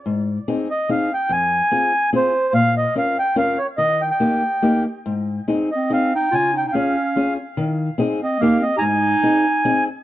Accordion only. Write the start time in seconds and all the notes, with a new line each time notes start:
0.71 D#5
0.91 F5
1.14 G5
1.32 G#5
2.16 C5
2.54 F5
2.77 D#5
2.98 F5
3.19 G5
3.38 F5
3.58 C#5
3.78 D#5
4.02 G5
4.11 G5
5.72 D#5
5.93 F5
6.15 G5
6.34 G#5
6.58 G5
6.68 G5
6.72 F5
8.23 D#5
8.40 F5
8.62 D#5
8.78 G#5 A#5